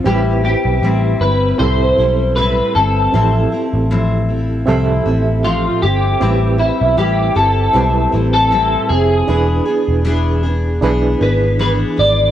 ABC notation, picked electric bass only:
X:1
M:4/4
L:1/16
Q:"Swing 16ths" 1/4=78
K:Am
V:1 name="Picked electric bass" clef=bass
A,,,3 B,,, A,,,2 G,,,2 C,,2 B,,,4 G,,,2 | A,,,2 z A,,,4- A,,, C,,2 A,,,4 G,,,2 | A,,,3 B,,, A,,,2 G,,,2 B,,,2 A,,,4 F,,,2 | E,,,2 z E,,,4- E,,, B,,,2 ^G,,,4 G,,,2 |]